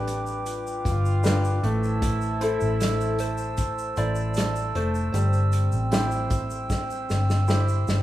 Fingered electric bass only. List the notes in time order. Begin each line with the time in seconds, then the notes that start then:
Already playing: A1
0.85 G1
1.64 A1
2.62 A1
3.97 A1
4.75 F1
5.14 G1
5.73 A1
7.10 G1
7.88 G1